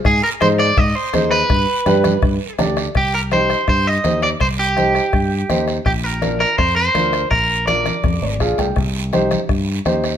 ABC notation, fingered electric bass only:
X:1
M:4/4
L:1/8
Q:1/4=165
K:Cm
V:1 name="Fingered electric bass" clef=bass
A,, z A,,2 A,, z E,,2 | G,, z G,,2 G,, z D,,2 | C,,4 G,,2 E,,2 | C,,4 G,,2 E,,2 |
B,,,4 F,,2 D,,2 | B,,,4 F,, A,,, B,,, C,, | C,,4 G,,2 E,,2 |]